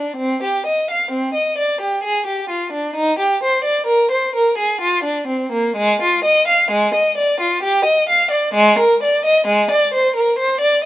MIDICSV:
0, 0, Header, 1, 2, 480
1, 0, Start_track
1, 0, Tempo, 952381
1, 82, Time_signature, 3, 2, 24, 8
1, 1036, Tempo, 924499
1, 5604, End_track
2, 0, Start_track
2, 0, Title_t, "Violin"
2, 0, Program_c, 0, 40
2, 0, Note_on_c, 0, 62, 54
2, 81, Note_off_c, 0, 62, 0
2, 83, Note_on_c, 0, 60, 80
2, 206, Note_off_c, 0, 60, 0
2, 215, Note_on_c, 0, 67, 62
2, 331, Note_off_c, 0, 67, 0
2, 335, Note_on_c, 0, 75, 61
2, 449, Note_off_c, 0, 75, 0
2, 456, Note_on_c, 0, 77, 65
2, 559, Note_on_c, 0, 60, 63
2, 568, Note_off_c, 0, 77, 0
2, 675, Note_on_c, 0, 75, 61
2, 678, Note_off_c, 0, 60, 0
2, 795, Note_off_c, 0, 75, 0
2, 796, Note_on_c, 0, 74, 64
2, 912, Note_on_c, 0, 67, 54
2, 914, Note_off_c, 0, 74, 0
2, 1024, Note_on_c, 0, 68, 71
2, 1030, Note_off_c, 0, 67, 0
2, 1147, Note_off_c, 0, 68, 0
2, 1147, Note_on_c, 0, 67, 64
2, 1262, Note_on_c, 0, 65, 54
2, 1268, Note_off_c, 0, 67, 0
2, 1381, Note_on_c, 0, 62, 58
2, 1385, Note_off_c, 0, 65, 0
2, 1501, Note_on_c, 0, 63, 87
2, 1503, Note_off_c, 0, 62, 0
2, 1623, Note_off_c, 0, 63, 0
2, 1624, Note_on_c, 0, 67, 64
2, 1744, Note_off_c, 0, 67, 0
2, 1751, Note_on_c, 0, 72, 70
2, 1860, Note_on_c, 0, 74, 71
2, 1868, Note_off_c, 0, 72, 0
2, 1974, Note_on_c, 0, 70, 81
2, 1983, Note_off_c, 0, 74, 0
2, 2100, Note_off_c, 0, 70, 0
2, 2103, Note_on_c, 0, 72, 64
2, 2224, Note_off_c, 0, 72, 0
2, 2230, Note_on_c, 0, 70, 66
2, 2346, Note_on_c, 0, 68, 62
2, 2347, Note_off_c, 0, 70, 0
2, 2464, Note_off_c, 0, 68, 0
2, 2465, Note_on_c, 0, 65, 75
2, 2584, Note_off_c, 0, 65, 0
2, 2584, Note_on_c, 0, 62, 64
2, 2705, Note_off_c, 0, 62, 0
2, 2707, Note_on_c, 0, 60, 60
2, 2829, Note_off_c, 0, 60, 0
2, 2834, Note_on_c, 0, 58, 63
2, 2957, Note_off_c, 0, 58, 0
2, 2959, Note_on_c, 0, 56, 89
2, 3082, Note_off_c, 0, 56, 0
2, 3094, Note_on_c, 0, 65, 78
2, 3208, Note_off_c, 0, 65, 0
2, 3210, Note_on_c, 0, 75, 80
2, 3325, Note_off_c, 0, 75, 0
2, 3332, Note_on_c, 0, 77, 78
2, 3445, Note_off_c, 0, 77, 0
2, 3452, Note_on_c, 0, 56, 81
2, 3565, Note_off_c, 0, 56, 0
2, 3573, Note_on_c, 0, 75, 78
2, 3686, Note_off_c, 0, 75, 0
2, 3694, Note_on_c, 0, 74, 77
2, 3807, Note_off_c, 0, 74, 0
2, 3813, Note_on_c, 0, 65, 71
2, 3927, Note_off_c, 0, 65, 0
2, 3927, Note_on_c, 0, 67, 83
2, 4044, Note_off_c, 0, 67, 0
2, 4044, Note_on_c, 0, 75, 71
2, 4161, Note_off_c, 0, 75, 0
2, 4169, Note_on_c, 0, 77, 74
2, 4281, Note_on_c, 0, 74, 66
2, 4283, Note_off_c, 0, 77, 0
2, 4399, Note_off_c, 0, 74, 0
2, 4402, Note_on_c, 0, 56, 104
2, 4518, Note_off_c, 0, 56, 0
2, 4532, Note_on_c, 0, 70, 82
2, 4642, Note_off_c, 0, 70, 0
2, 4657, Note_on_c, 0, 74, 74
2, 4765, Note_off_c, 0, 74, 0
2, 4771, Note_on_c, 0, 75, 84
2, 4881, Note_off_c, 0, 75, 0
2, 4886, Note_on_c, 0, 56, 83
2, 4998, Note_off_c, 0, 56, 0
2, 5009, Note_on_c, 0, 74, 78
2, 5119, Note_off_c, 0, 74, 0
2, 5128, Note_on_c, 0, 72, 74
2, 5238, Note_off_c, 0, 72, 0
2, 5245, Note_on_c, 0, 70, 67
2, 5355, Note_off_c, 0, 70, 0
2, 5362, Note_on_c, 0, 72, 85
2, 5474, Note_off_c, 0, 72, 0
2, 5475, Note_on_c, 0, 74, 80
2, 5592, Note_off_c, 0, 74, 0
2, 5604, End_track
0, 0, End_of_file